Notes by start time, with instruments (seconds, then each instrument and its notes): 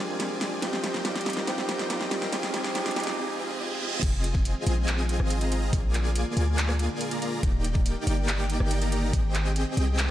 Already playing: tine electric piano F3 G#3 C4 D4 G4 A#4, analog synth pad G#3 A#3 F4 A#4, supersaw synth C4 F4 G#4 D5 G#5, riser
0.08 tine electric piano F3 G#3 C4 D4 A#4
0.20 snare, closed hi-hat
0.39 tine electric piano F3 G#3 C4 D4, supersaw synth C4 F4 G#4 D5 G#5, snare, closed hi-hat
0.43 tine electric piano G4
0.61 tine electric piano F3 G3 C4 D#4 G4, analog synth pad G3 A#3 D#4 A#4, supersaw synth C4 F4 G4 D#5 G5, snare, closed hi-hat
0.73 snare
0.84 snare, closed hi-hat
0.93 tine electric piano F3 G3 C4 D#4 A#4, snare
1.04 tine electric piano F3 G3 C4 D#4 G4, supersaw synth C4 F4 G4 D#5 G5, snare, closed hi-hat
1.16 snare, closed hi-hat
1.21 closed hi-hat
1.26 snare, closed hi-hat
1.30 closed hi-hat
1.33 tine electric piano F3 G3 C4, snare, closed hi-hat
1.37 tine electric piano D#4 A#4
1.46 tine electric piano F3 G3 C4 D#4 G4, supersaw synth C4 F4 G4 D#5 G5, snare, closed hi-hat
1.58 snare
1.69 snare, closed hi-hat
1.78 tine electric piano F3 G3 C4 D#4 A#4, snare
1.89 tine electric piano F3 G3 C4 D#4 G4, supersaw synth C4 F4 G4 D#5 G5, snare, closed hi-hat
2.01 snare
2.11 snare, closed hi-hat
2.21 tine electric piano F3 G3 C4 D#4 A#4, snare
2.32 tine electric piano F3 G#3 C4 D#4 G4, analog synth pad G#3 C4 G4 C5, supersaw synth C4 F4 G#4 D#5 G#5, snare, closed hi-hat
2.43 snare
2.53 tine electric piano F3 G#3 C4 D#4 G4, supersaw synth C4 F4 G#4 D#5 G#5, snare, closed hi-hat
2.64 snare
2.74 tine electric piano F3 G#3 C4 D#4 G4, supersaw synth C4 F4 G#4 D#5 G#5, snare, closed hi-hat
2.86 snare, closed hi-hat
2.91 closed hi-hat
2.95 tine electric piano F3 G#3 C4 D#4 G4, supersaw synth C4 F4 G#4 D#5 G#5, snare, closed hi-hat
3.00 closed hi-hat
3.03 snare, closed hi-hat
3.18 supersaw synth C4 F4 G#4 D#5 G#5, reverse cymbal
3.39 supersaw synth C4 F4 G#4 D#5 G#5
3.60 supersaw synth C4 F4 G#4 D#5 G#5
3.81 supersaw synth C4 F4 G#4 D#5 G#5
4.03 808-style bass F1, analog synth pad D#3 F3 G#3 C4 F4, supersaw synth G#4 G#5, kick, closed hi-hat, crash
4.24 closed hi-hat
4.35 kick
4.45 closed hi-hat
4.67 808-style bass A#1, supersaw synth C4 F4 G#4 D#5 G#5, closed hi-hat
4.88 clap, closed hi-hat
5.09 closed hi-hat
5.20 808-style bass G#1, cross-stick
5.30 closed hi-hat
5.41 supersaw synth C4 F4 G#4 D#5 A#5, closed hi-hat
5.52 supersaw synth C4 F4 G#4 D#5 A#5, closed hi-hat
5.73 808-style bass A#1, analog synth pad D3 G#3 A#3, supersaw synth A#3 F4 D5, kick, closed hi-hat
5.94 clap, closed hi-hat
6.16 closed hi-hat
6.37 808-style bass D2, supersaw synth A#3 F4 G#4 D5 G#5, closed hi-hat
6.58 clap, closed hi-hat
6.69 cross-stick
6.79 closed hi-hat
7.01 closed hi-hat
7.11 supersaw synth A#3 F4 G#4 D5 A#5, closed hi-hat
7.22 supersaw synth A#3 F4 G#4 D5 A#5, closed hi-hat
7.43 808-style bass D#1, analog synth pad D#3 D5 G5, supersaw synth A#3 D#4 G4 D5 G5, kick, closed hi-hat
7.64 closed hi-hat
7.75 kick
7.86 closed hi-hat
8.07 808-style bass G1, supersaw synth A#3 D#4 G4 D5 G5, closed hi-hat
8.28 clap, closed hi-hat
8.50 closed hi-hat
8.60 808-style bass G1, cross-stick
8.71 closed hi-hat
8.82 supersaw synth A#3 D#4 G4 D5 A#5, closed hi-hat
8.92 supersaw synth A#3 D#4 G4 D5 A#5, closed hi-hat
9.13 808-style bass G#1, analog synth pad G#3 C4, kick, closed hi-hat
9.35 clap, closed hi-hat
9.56 closed hi-hat
9.77 808-style bass C2, supersaw synth C4 G4 G#4 D#5 G5, closed hi-hat
9.99 clap, closed hi-hat